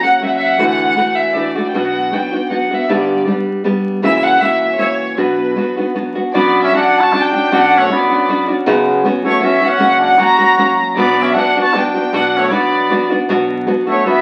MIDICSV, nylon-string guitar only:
0, 0, Header, 1, 2, 480
1, 0, Start_track
1, 0, Key_signature, 2, "minor"
1, 0, Tempo, 380952
1, 746, Time_signature, 3, 2, 24, 8
1, 6034, Tempo, 385852
1, 7977, Key_signature, 2, "minor"
1, 17760, End_track
2, 0, Start_track
2, 0, Title_t, "Nylon-string guitar"
2, 0, Program_c, 0, 24
2, 38, Note_on_c, 0, 66, 38
2, 50, Note_on_c, 0, 61, 41
2, 55, Note_on_c, 0, 58, 36
2, 60, Note_on_c, 0, 54, 31
2, 252, Note_off_c, 0, 54, 0
2, 259, Note_off_c, 0, 58, 0
2, 267, Note_on_c, 0, 54, 51
2, 268, Note_off_c, 0, 61, 0
2, 268, Note_off_c, 0, 66, 0
2, 274, Note_on_c, 0, 58, 48
2, 282, Note_on_c, 0, 66, 59
2, 284, Note_on_c, 0, 61, 44
2, 736, Note_on_c, 0, 50, 60
2, 737, Note_off_c, 0, 54, 0
2, 739, Note_off_c, 0, 58, 0
2, 743, Note_off_c, 0, 66, 0
2, 743, Note_on_c, 0, 52, 68
2, 745, Note_on_c, 0, 57, 60
2, 748, Note_off_c, 0, 61, 0
2, 748, Note_on_c, 0, 66, 72
2, 753, Note_on_c, 0, 62, 62
2, 1195, Note_off_c, 0, 52, 0
2, 1201, Note_off_c, 0, 57, 0
2, 1210, Note_on_c, 0, 52, 54
2, 1217, Note_on_c, 0, 57, 51
2, 1220, Note_off_c, 0, 62, 0
2, 1220, Note_off_c, 0, 66, 0
2, 1225, Note_on_c, 0, 62, 49
2, 1235, Note_on_c, 0, 66, 51
2, 1248, Note_off_c, 0, 50, 0
2, 1680, Note_off_c, 0, 52, 0
2, 1690, Note_off_c, 0, 57, 0
2, 1695, Note_on_c, 0, 52, 44
2, 1705, Note_on_c, 0, 57, 47
2, 1707, Note_off_c, 0, 66, 0
2, 1709, Note_off_c, 0, 62, 0
2, 1714, Note_on_c, 0, 62, 46
2, 1722, Note_on_c, 0, 66, 49
2, 1942, Note_off_c, 0, 66, 0
2, 1950, Note_off_c, 0, 62, 0
2, 1957, Note_on_c, 0, 66, 39
2, 1958, Note_off_c, 0, 52, 0
2, 1963, Note_off_c, 0, 57, 0
2, 1965, Note_on_c, 0, 62, 30
2, 1982, Note_on_c, 0, 57, 31
2, 2191, Note_off_c, 0, 62, 0
2, 2192, Note_off_c, 0, 66, 0
2, 2196, Note_on_c, 0, 47, 67
2, 2199, Note_off_c, 0, 57, 0
2, 2202, Note_on_c, 0, 54, 56
2, 2204, Note_on_c, 0, 59, 56
2, 2206, Note_on_c, 0, 62, 59
2, 2215, Note_on_c, 0, 66, 61
2, 2659, Note_off_c, 0, 54, 0
2, 2670, Note_off_c, 0, 59, 0
2, 2674, Note_on_c, 0, 54, 47
2, 2679, Note_off_c, 0, 62, 0
2, 2681, Note_off_c, 0, 47, 0
2, 2681, Note_off_c, 0, 66, 0
2, 2685, Note_on_c, 0, 59, 45
2, 2694, Note_on_c, 0, 62, 49
2, 2696, Note_on_c, 0, 66, 58
2, 2911, Note_off_c, 0, 66, 0
2, 2926, Note_on_c, 0, 66, 38
2, 2929, Note_off_c, 0, 62, 0
2, 2931, Note_off_c, 0, 54, 0
2, 2933, Note_off_c, 0, 59, 0
2, 2944, Note_on_c, 0, 62, 33
2, 2948, Note_on_c, 0, 59, 24
2, 3146, Note_off_c, 0, 59, 0
2, 3148, Note_on_c, 0, 54, 48
2, 3153, Note_off_c, 0, 62, 0
2, 3159, Note_off_c, 0, 66, 0
2, 3162, Note_on_c, 0, 59, 52
2, 3169, Note_on_c, 0, 62, 41
2, 3172, Note_on_c, 0, 66, 49
2, 3396, Note_off_c, 0, 66, 0
2, 3407, Note_off_c, 0, 54, 0
2, 3411, Note_off_c, 0, 62, 0
2, 3411, Note_on_c, 0, 66, 38
2, 3414, Note_off_c, 0, 59, 0
2, 3426, Note_on_c, 0, 62, 28
2, 3429, Note_on_c, 0, 59, 35
2, 3634, Note_off_c, 0, 59, 0
2, 3640, Note_off_c, 0, 62, 0
2, 3640, Note_off_c, 0, 66, 0
2, 3644, Note_on_c, 0, 43, 62
2, 3644, Note_on_c, 0, 50, 73
2, 3649, Note_on_c, 0, 59, 58
2, 3653, Note_on_c, 0, 55, 60
2, 3655, Note_on_c, 0, 62, 66
2, 3657, Note_on_c, 0, 67, 66
2, 4100, Note_off_c, 0, 55, 0
2, 4108, Note_off_c, 0, 59, 0
2, 4111, Note_off_c, 0, 62, 0
2, 4115, Note_on_c, 0, 55, 42
2, 4116, Note_off_c, 0, 67, 0
2, 4120, Note_off_c, 0, 43, 0
2, 4121, Note_off_c, 0, 50, 0
2, 4123, Note_on_c, 0, 59, 44
2, 4126, Note_on_c, 0, 62, 49
2, 4131, Note_on_c, 0, 67, 54
2, 4573, Note_off_c, 0, 55, 0
2, 4580, Note_off_c, 0, 59, 0
2, 4588, Note_off_c, 0, 62, 0
2, 4588, Note_on_c, 0, 55, 56
2, 4591, Note_off_c, 0, 67, 0
2, 4595, Note_on_c, 0, 59, 53
2, 4603, Note_on_c, 0, 62, 51
2, 4607, Note_on_c, 0, 67, 61
2, 5069, Note_on_c, 0, 42, 58
2, 5070, Note_off_c, 0, 55, 0
2, 5075, Note_off_c, 0, 59, 0
2, 5075, Note_on_c, 0, 52, 70
2, 5076, Note_on_c, 0, 49, 60
2, 5078, Note_off_c, 0, 62, 0
2, 5079, Note_off_c, 0, 67, 0
2, 5080, Note_on_c, 0, 58, 63
2, 5084, Note_on_c, 0, 66, 70
2, 5086, Note_on_c, 0, 61, 83
2, 5536, Note_off_c, 0, 52, 0
2, 5540, Note_off_c, 0, 58, 0
2, 5546, Note_off_c, 0, 61, 0
2, 5551, Note_off_c, 0, 42, 0
2, 5551, Note_on_c, 0, 52, 49
2, 5554, Note_off_c, 0, 49, 0
2, 5555, Note_on_c, 0, 58, 50
2, 5561, Note_on_c, 0, 61, 49
2, 5567, Note_off_c, 0, 66, 0
2, 5572, Note_on_c, 0, 66, 62
2, 6007, Note_off_c, 0, 52, 0
2, 6010, Note_off_c, 0, 58, 0
2, 6018, Note_off_c, 0, 61, 0
2, 6022, Note_on_c, 0, 52, 42
2, 6025, Note_on_c, 0, 58, 58
2, 6032, Note_off_c, 0, 66, 0
2, 6033, Note_on_c, 0, 61, 43
2, 6037, Note_on_c, 0, 66, 41
2, 6509, Note_off_c, 0, 52, 0
2, 6511, Note_off_c, 0, 58, 0
2, 6511, Note_on_c, 0, 47, 58
2, 6513, Note_off_c, 0, 61, 0
2, 6517, Note_on_c, 0, 54, 60
2, 6518, Note_on_c, 0, 62, 62
2, 6522, Note_on_c, 0, 59, 65
2, 6525, Note_off_c, 0, 66, 0
2, 6530, Note_on_c, 0, 66, 57
2, 6995, Note_off_c, 0, 54, 0
2, 6997, Note_off_c, 0, 47, 0
2, 6999, Note_on_c, 0, 54, 49
2, 7003, Note_off_c, 0, 59, 0
2, 7008, Note_off_c, 0, 62, 0
2, 7008, Note_on_c, 0, 59, 45
2, 7013, Note_on_c, 0, 62, 42
2, 7016, Note_off_c, 0, 66, 0
2, 7021, Note_on_c, 0, 66, 49
2, 7242, Note_off_c, 0, 66, 0
2, 7255, Note_off_c, 0, 54, 0
2, 7256, Note_off_c, 0, 62, 0
2, 7257, Note_on_c, 0, 66, 34
2, 7259, Note_off_c, 0, 59, 0
2, 7270, Note_on_c, 0, 62, 33
2, 7277, Note_on_c, 0, 59, 35
2, 7470, Note_off_c, 0, 59, 0
2, 7472, Note_off_c, 0, 62, 0
2, 7477, Note_off_c, 0, 66, 0
2, 7478, Note_on_c, 0, 54, 48
2, 7485, Note_on_c, 0, 59, 40
2, 7487, Note_on_c, 0, 62, 50
2, 7492, Note_on_c, 0, 66, 49
2, 7716, Note_off_c, 0, 66, 0
2, 7727, Note_off_c, 0, 62, 0
2, 7731, Note_on_c, 0, 66, 41
2, 7734, Note_off_c, 0, 59, 0
2, 7740, Note_off_c, 0, 54, 0
2, 7742, Note_on_c, 0, 62, 27
2, 7749, Note_on_c, 0, 59, 34
2, 7957, Note_off_c, 0, 62, 0
2, 7964, Note_off_c, 0, 59, 0
2, 7967, Note_off_c, 0, 66, 0
2, 7967, Note_on_c, 0, 47, 53
2, 7969, Note_on_c, 0, 61, 63
2, 7971, Note_on_c, 0, 54, 76
2, 7972, Note_on_c, 0, 62, 76
2, 7982, Note_on_c, 0, 66, 67
2, 8445, Note_off_c, 0, 54, 0
2, 8449, Note_off_c, 0, 62, 0
2, 8450, Note_on_c, 0, 54, 44
2, 8451, Note_off_c, 0, 61, 0
2, 8456, Note_on_c, 0, 61, 47
2, 8458, Note_off_c, 0, 47, 0
2, 8464, Note_on_c, 0, 62, 46
2, 8469, Note_off_c, 0, 66, 0
2, 8474, Note_on_c, 0, 66, 50
2, 8935, Note_off_c, 0, 54, 0
2, 8940, Note_on_c, 0, 54, 52
2, 8942, Note_off_c, 0, 62, 0
2, 8943, Note_off_c, 0, 61, 0
2, 8948, Note_on_c, 0, 61, 60
2, 8957, Note_on_c, 0, 62, 53
2, 8963, Note_off_c, 0, 66, 0
2, 8968, Note_on_c, 0, 66, 54
2, 9179, Note_off_c, 0, 66, 0
2, 9190, Note_off_c, 0, 62, 0
2, 9194, Note_on_c, 0, 66, 41
2, 9196, Note_off_c, 0, 54, 0
2, 9196, Note_off_c, 0, 61, 0
2, 9205, Note_on_c, 0, 62, 35
2, 9211, Note_on_c, 0, 61, 37
2, 9419, Note_off_c, 0, 61, 0
2, 9423, Note_off_c, 0, 62, 0
2, 9424, Note_off_c, 0, 66, 0
2, 9426, Note_on_c, 0, 47, 67
2, 9432, Note_on_c, 0, 54, 74
2, 9434, Note_on_c, 0, 61, 63
2, 9438, Note_on_c, 0, 62, 79
2, 9444, Note_on_c, 0, 66, 85
2, 9901, Note_off_c, 0, 54, 0
2, 9903, Note_off_c, 0, 62, 0
2, 9904, Note_off_c, 0, 47, 0
2, 9906, Note_off_c, 0, 61, 0
2, 9906, Note_on_c, 0, 54, 49
2, 9911, Note_on_c, 0, 61, 53
2, 9916, Note_off_c, 0, 66, 0
2, 9918, Note_on_c, 0, 62, 47
2, 9921, Note_on_c, 0, 66, 52
2, 10136, Note_off_c, 0, 66, 0
2, 10151, Note_on_c, 0, 66, 43
2, 10152, Note_off_c, 0, 62, 0
2, 10156, Note_off_c, 0, 54, 0
2, 10158, Note_off_c, 0, 61, 0
2, 10167, Note_on_c, 0, 62, 40
2, 10175, Note_on_c, 0, 61, 37
2, 10372, Note_off_c, 0, 61, 0
2, 10378, Note_off_c, 0, 66, 0
2, 10380, Note_off_c, 0, 62, 0
2, 10385, Note_on_c, 0, 54, 51
2, 10387, Note_on_c, 0, 61, 54
2, 10395, Note_on_c, 0, 62, 67
2, 10403, Note_on_c, 0, 66, 57
2, 10613, Note_off_c, 0, 66, 0
2, 10622, Note_off_c, 0, 62, 0
2, 10628, Note_on_c, 0, 66, 43
2, 10631, Note_off_c, 0, 54, 0
2, 10632, Note_off_c, 0, 61, 0
2, 10637, Note_on_c, 0, 62, 44
2, 10652, Note_on_c, 0, 61, 41
2, 10851, Note_on_c, 0, 42, 76
2, 10853, Note_off_c, 0, 61, 0
2, 10853, Note_off_c, 0, 66, 0
2, 10854, Note_on_c, 0, 54, 88
2, 10857, Note_off_c, 0, 62, 0
2, 10857, Note_on_c, 0, 49, 98
2, 10860, Note_on_c, 0, 59, 84
2, 10866, Note_on_c, 0, 66, 82
2, 10868, Note_on_c, 0, 61, 76
2, 11316, Note_off_c, 0, 59, 0
2, 11326, Note_off_c, 0, 42, 0
2, 11326, Note_off_c, 0, 54, 0
2, 11329, Note_off_c, 0, 49, 0
2, 11329, Note_off_c, 0, 61, 0
2, 11331, Note_on_c, 0, 54, 65
2, 11331, Note_on_c, 0, 59, 64
2, 11342, Note_off_c, 0, 66, 0
2, 11344, Note_on_c, 0, 61, 63
2, 11347, Note_on_c, 0, 66, 72
2, 11560, Note_off_c, 0, 66, 0
2, 11569, Note_off_c, 0, 61, 0
2, 11575, Note_off_c, 0, 59, 0
2, 11575, Note_on_c, 0, 66, 38
2, 11579, Note_off_c, 0, 54, 0
2, 11584, Note_on_c, 0, 61, 43
2, 11590, Note_on_c, 0, 59, 35
2, 11595, Note_on_c, 0, 54, 31
2, 11768, Note_off_c, 0, 54, 0
2, 11777, Note_off_c, 0, 59, 0
2, 11783, Note_on_c, 0, 54, 51
2, 11785, Note_off_c, 0, 61, 0
2, 11792, Note_off_c, 0, 66, 0
2, 11792, Note_on_c, 0, 59, 54
2, 11800, Note_on_c, 0, 61, 54
2, 11807, Note_on_c, 0, 66, 60
2, 12026, Note_off_c, 0, 66, 0
2, 12028, Note_off_c, 0, 61, 0
2, 12038, Note_off_c, 0, 59, 0
2, 12041, Note_on_c, 0, 66, 41
2, 12043, Note_off_c, 0, 54, 0
2, 12043, Note_on_c, 0, 61, 41
2, 12053, Note_on_c, 0, 59, 30
2, 12059, Note_on_c, 0, 54, 36
2, 12249, Note_off_c, 0, 54, 0
2, 12252, Note_off_c, 0, 61, 0
2, 12252, Note_on_c, 0, 42, 56
2, 12257, Note_off_c, 0, 66, 0
2, 12260, Note_off_c, 0, 59, 0
2, 12261, Note_on_c, 0, 49, 57
2, 12264, Note_on_c, 0, 54, 58
2, 12265, Note_on_c, 0, 58, 66
2, 12267, Note_on_c, 0, 61, 76
2, 12272, Note_on_c, 0, 66, 82
2, 12739, Note_off_c, 0, 54, 0
2, 12740, Note_off_c, 0, 58, 0
2, 12743, Note_off_c, 0, 42, 0
2, 12744, Note_off_c, 0, 61, 0
2, 12744, Note_on_c, 0, 54, 43
2, 12748, Note_off_c, 0, 49, 0
2, 12755, Note_on_c, 0, 58, 48
2, 12759, Note_on_c, 0, 61, 58
2, 12760, Note_off_c, 0, 66, 0
2, 12765, Note_on_c, 0, 66, 60
2, 12979, Note_off_c, 0, 66, 0
2, 12983, Note_off_c, 0, 61, 0
2, 12994, Note_on_c, 0, 66, 42
2, 12997, Note_off_c, 0, 58, 0
2, 12998, Note_on_c, 0, 61, 30
2, 13003, Note_off_c, 0, 54, 0
2, 13012, Note_on_c, 0, 58, 37
2, 13015, Note_on_c, 0, 54, 30
2, 13218, Note_off_c, 0, 54, 0
2, 13227, Note_off_c, 0, 58, 0
2, 13232, Note_off_c, 0, 66, 0
2, 13233, Note_on_c, 0, 54, 58
2, 13234, Note_off_c, 0, 61, 0
2, 13242, Note_on_c, 0, 58, 45
2, 13248, Note_on_c, 0, 61, 55
2, 13254, Note_on_c, 0, 66, 45
2, 13718, Note_off_c, 0, 54, 0
2, 13721, Note_off_c, 0, 58, 0
2, 13721, Note_on_c, 0, 47, 66
2, 13723, Note_on_c, 0, 54, 76
2, 13725, Note_off_c, 0, 61, 0
2, 13726, Note_on_c, 0, 59, 78
2, 13730, Note_on_c, 0, 62, 72
2, 13734, Note_off_c, 0, 66, 0
2, 13739, Note_on_c, 0, 66, 71
2, 14204, Note_off_c, 0, 54, 0
2, 14208, Note_off_c, 0, 47, 0
2, 14209, Note_on_c, 0, 54, 61
2, 14210, Note_off_c, 0, 59, 0
2, 14215, Note_on_c, 0, 59, 51
2, 14221, Note_off_c, 0, 62, 0
2, 14225, Note_off_c, 0, 66, 0
2, 14226, Note_on_c, 0, 62, 57
2, 14230, Note_on_c, 0, 66, 56
2, 14455, Note_off_c, 0, 66, 0
2, 14463, Note_off_c, 0, 54, 0
2, 14463, Note_off_c, 0, 62, 0
2, 14466, Note_off_c, 0, 59, 0
2, 14470, Note_on_c, 0, 66, 38
2, 14478, Note_on_c, 0, 62, 36
2, 14492, Note_on_c, 0, 59, 31
2, 14667, Note_off_c, 0, 59, 0
2, 14673, Note_off_c, 0, 62, 0
2, 14677, Note_on_c, 0, 54, 52
2, 14681, Note_off_c, 0, 66, 0
2, 14682, Note_on_c, 0, 59, 57
2, 14688, Note_on_c, 0, 62, 55
2, 14696, Note_on_c, 0, 66, 50
2, 14926, Note_off_c, 0, 66, 0
2, 14936, Note_off_c, 0, 54, 0
2, 14938, Note_off_c, 0, 59, 0
2, 14938, Note_off_c, 0, 62, 0
2, 14940, Note_on_c, 0, 66, 38
2, 14953, Note_on_c, 0, 62, 40
2, 14963, Note_on_c, 0, 59, 33
2, 15160, Note_off_c, 0, 59, 0
2, 15162, Note_off_c, 0, 62, 0
2, 15162, Note_on_c, 0, 47, 70
2, 15165, Note_off_c, 0, 66, 0
2, 15168, Note_on_c, 0, 54, 68
2, 15175, Note_on_c, 0, 59, 55
2, 15177, Note_on_c, 0, 62, 66
2, 15180, Note_on_c, 0, 66, 81
2, 15625, Note_off_c, 0, 54, 0
2, 15630, Note_on_c, 0, 54, 54
2, 15635, Note_off_c, 0, 59, 0
2, 15640, Note_on_c, 0, 59, 56
2, 15645, Note_off_c, 0, 47, 0
2, 15645, Note_off_c, 0, 62, 0
2, 15647, Note_off_c, 0, 66, 0
2, 15650, Note_on_c, 0, 62, 58
2, 15652, Note_on_c, 0, 66, 65
2, 16123, Note_off_c, 0, 54, 0
2, 16127, Note_off_c, 0, 59, 0
2, 16128, Note_on_c, 0, 54, 51
2, 16132, Note_on_c, 0, 59, 50
2, 16134, Note_off_c, 0, 62, 0
2, 16139, Note_on_c, 0, 62, 62
2, 16140, Note_off_c, 0, 66, 0
2, 16145, Note_on_c, 0, 66, 56
2, 16357, Note_off_c, 0, 66, 0
2, 16366, Note_off_c, 0, 62, 0
2, 16372, Note_on_c, 0, 66, 43
2, 16373, Note_off_c, 0, 59, 0
2, 16379, Note_off_c, 0, 54, 0
2, 16381, Note_on_c, 0, 62, 45
2, 16388, Note_on_c, 0, 59, 44
2, 16600, Note_off_c, 0, 59, 0
2, 16602, Note_off_c, 0, 62, 0
2, 16602, Note_off_c, 0, 66, 0
2, 16607, Note_on_c, 0, 47, 77
2, 16608, Note_on_c, 0, 54, 82
2, 16615, Note_on_c, 0, 59, 76
2, 16617, Note_on_c, 0, 62, 88
2, 16624, Note_on_c, 0, 66, 90
2, 17075, Note_off_c, 0, 54, 0
2, 17080, Note_on_c, 0, 54, 61
2, 17083, Note_off_c, 0, 47, 0
2, 17086, Note_off_c, 0, 59, 0
2, 17091, Note_on_c, 0, 59, 65
2, 17092, Note_off_c, 0, 62, 0
2, 17092, Note_off_c, 0, 66, 0
2, 17097, Note_on_c, 0, 62, 57
2, 17097, Note_on_c, 0, 66, 60
2, 17314, Note_off_c, 0, 66, 0
2, 17329, Note_on_c, 0, 66, 44
2, 17330, Note_off_c, 0, 62, 0
2, 17332, Note_off_c, 0, 54, 0
2, 17335, Note_off_c, 0, 59, 0
2, 17345, Note_on_c, 0, 62, 37
2, 17349, Note_on_c, 0, 59, 34
2, 17549, Note_off_c, 0, 59, 0
2, 17557, Note_off_c, 0, 62, 0
2, 17557, Note_on_c, 0, 54, 55
2, 17558, Note_off_c, 0, 66, 0
2, 17564, Note_on_c, 0, 59, 53
2, 17572, Note_on_c, 0, 62, 59
2, 17580, Note_on_c, 0, 66, 58
2, 17760, Note_off_c, 0, 54, 0
2, 17760, Note_off_c, 0, 59, 0
2, 17760, Note_off_c, 0, 62, 0
2, 17760, Note_off_c, 0, 66, 0
2, 17760, End_track
0, 0, End_of_file